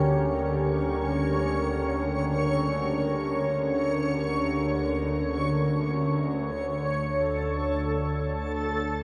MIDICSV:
0, 0, Header, 1, 4, 480
1, 0, Start_track
1, 0, Tempo, 500000
1, 8669, End_track
2, 0, Start_track
2, 0, Title_t, "Synth texture"
2, 0, Program_c, 0, 99
2, 0, Note_on_c, 0, 73, 71
2, 6288, Note_on_c, 0, 69, 79
2, 6312, Note_off_c, 0, 73, 0
2, 8669, Note_off_c, 0, 69, 0
2, 8669, End_track
3, 0, Start_track
3, 0, Title_t, "Ambient pad"
3, 0, Program_c, 1, 92
3, 0, Note_on_c, 1, 50, 82
3, 0, Note_on_c, 1, 61, 65
3, 0, Note_on_c, 1, 67, 79
3, 0, Note_on_c, 1, 70, 85
3, 6266, Note_on_c, 1, 62, 67
3, 6282, Note_off_c, 1, 50, 0
3, 6283, Note_off_c, 1, 61, 0
3, 6298, Note_off_c, 1, 70, 0
3, 7219, Note_on_c, 1, 65, 66
3, 7460, Note_on_c, 1, 73, 68
3, 8669, Note_off_c, 1, 62, 0
3, 8669, Note_off_c, 1, 65, 0
3, 8669, Note_off_c, 1, 67, 0
3, 8669, Note_off_c, 1, 73, 0
3, 8669, End_track
4, 0, Start_track
4, 0, Title_t, "Synth drone"
4, 0, Program_c, 2, 95
4, 0, Note_on_c, 2, 38, 61
4, 0, Note_on_c, 2, 50, 65
4, 6252, Note_off_c, 2, 50, 0
4, 6263, Note_on_c, 2, 50, 67
4, 6264, Note_off_c, 2, 38, 0
4, 6276, Note_on_c, 2, 38, 69
4, 8669, Note_off_c, 2, 38, 0
4, 8669, Note_off_c, 2, 50, 0
4, 8669, End_track
0, 0, End_of_file